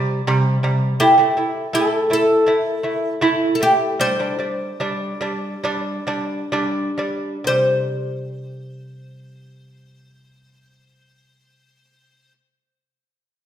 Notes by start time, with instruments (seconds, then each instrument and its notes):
Already playing: lute C3 G3
0.27 lute C3 G3
0.63 lute C3 G3
1.00 lute A3 E4, oud G4
1.18 lute A3 E4
1.37 lute A3 E4
1.73 lute A3 E4, oud A4
2.10 lute A3 E4, oud A4
2.46 lute A3 E4
2.65 oud A#4
2.79 oud A4
2.83 lute A3 E4
2.94 oud A#4
3.08 oud A4
3.21 lute A3 E4
3.55 oud A4
3.61 lute A3 E4, oud G4
4.00 lute G3 D4, oud C5
4.19 lute G3 D4
4.39 lute G3 D4
4.80 lute G3 D4
5.21 lute G3 D4
5.64 lute G3 D4
6.07 lute G3 D4
6.52 lute G3 D4
6.98 lute G3 D4
7.44 lute C3 G3, oud C5